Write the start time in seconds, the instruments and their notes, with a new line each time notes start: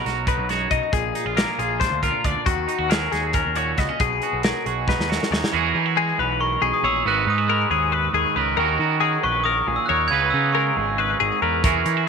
Already playing: clean electric guitar B2 F#3 A#4
0.05 picked electric bass B1, clean electric guitar F#4 A#4, snare, closed hi-hat
0.27 clean electric guitar D#4 B4, kick, closed hi-hat
0.38 picked electric bass B1
0.49 clean electric guitar F#2 F#4 C#5, snare, closed hi-hat
0.70 picked electric bass B1, clean electric guitar D#4 D#5, kick, closed hi-hat
0.92 picked electric bass A#1, clean electric guitar A#2 G#4, kick, closed hi-hat
1.15 clean electric guitar D#4, closed hi-hat
1.25 picked electric bass A#1, clean electric guitar F4
1.36 clean electric guitar A#3 G#4 A#4, snare, closed hi-hat
1.58 picked electric bass A#1, clean electric guitar F4 G#4, closed hi-hat
1.80 clean electric guitar D4 C5, kick, snare, closed hi-hat
1.91 picked electric bass D2
2.02 clean electric guitar A#2 F4 A#4, kick, closed hi-hat
2.24 picked electric bass D2, clean electric guitar D4 D5, kick, closed hi-hat
2.46 picked electric bass D#2, clean electric guitar D#3 F#4, kick, closed hi-hat
2.68 clean electric guitar D#4, closed hi-hat
2.79 picked electric bass D#2, clean electric guitar F#4
2.90 clean electric guitar F#3 G#4 A#4, snare, closed hi-hat
3.12 picked electric bass D#2, clean electric guitar F#4 G#4, snare, closed hi-hat
3.33 clean electric guitar C#4 A#4, kick, closed hi-hat
3.46 picked electric bass D#2
3.55 clean electric guitar A#2 F#4 C#5, closed hi-hat
3.77 picked electric bass C#2, clean electric guitar B3 D#5, kick, snare, closed hi-hat
3.89 clean electric guitar C#4
4.00 picked electric bass B1, clean electric guitar B2 G#4, kick, closed hi-hat
4.22 clean electric guitar F#4, closed hi-hat
4.33 picked electric bass B1
4.43 clean electric guitar F#3 G#4 A#4, snare, closed hi-hat
4.66 picked electric bass B1, clean electric guitar F#4 G#4, closed hi-hat
4.88 clean electric guitar D#4 B4, kick, snare
4.99 picked electric bass D#2, snare
5.09 clean electric guitar F#2 F#4 A#4, snare
5.23 snare
5.31 picked electric bass D#2, clean electric guitar D#4 C#5, snare
5.44 snare
5.52 picked electric bass E2, clean electric guitar E3 C#4 F#4 G#4 A#4
5.74 picked electric bass E3, clean electric guitar D#4
5.86 clean electric guitar F#4
5.96 clean electric guitar G#3 G#4
6.19 picked electric bass B1, clean electric guitar B4, glockenspiel B5
6.41 clean electric guitar A#4, glockenspiel C#6
6.62 picked electric bass B1, clean electric guitar B2 G#4
6.73 glockenspiel D#6
6.83 picked electric bass A#1, clean electric guitar G#4 C#5, glockenspiel E6
7.05 picked electric bass G#1, clean electric guitar G#2 B3 F#4 B4, glockenspiel F#6
7.27 picked electric bass G#2, clean electric guitar D#4, glockenspiel D#6
7.38 clean electric guitar F#4
7.48 clean electric guitar G#3 A#4, glockenspiel B5
7.70 picked electric bass D#2, clean electric guitar G#4
7.92 clean electric guitar B4
8.13 picked electric bass D#2, clean electric guitar D#3 G#4
8.36 picked electric bass C#2, clean electric guitar A#4 B4
8.57 picked electric bass D#2, clean electric guitar D#3 C#4 F#4 A#4
8.79 picked electric bass D#3, clean electric guitar F#4
9.00 clean electric guitar F#3 G#4
9.23 picked electric bass A#1, clean electric guitar B4, glockenspiel C#6
9.44 clean electric guitar A#4, glockenspiel D#6
9.67 picked electric bass A#1, clean electric guitar A#2 G#4
9.76 glockenspiel E6
9.86 picked electric bass D#2, clean electric guitar C#5, glockenspiel F#6
9.90 clean electric guitar A#4
10.08 picked electric bass C#2, clean electric guitar C#3 B3 B4, glockenspiel G#6
10.12 clean electric guitar D#4 B4
10.30 picked electric bass C#3, clean electric guitar D#4, glockenspiel E6
10.52 clean electric guitar G#3 A#4, glockenspiel C#6
10.77 picked electric bass G#1, clean electric guitar G#4
10.98 clean electric guitar B4
11.20 picked electric bass G#1, clean electric guitar G#2 G#4
11.42 picked electric bass E2, clean electric guitar A#4 B4
11.64 picked electric bass E2, clean electric guitar E3 C#4 F#4 G#4 A#4, kick, closed hi-hat
11.86 picked electric bass E3, clean electric guitar D#4, closed hi-hat
11.97 clean electric guitar F#4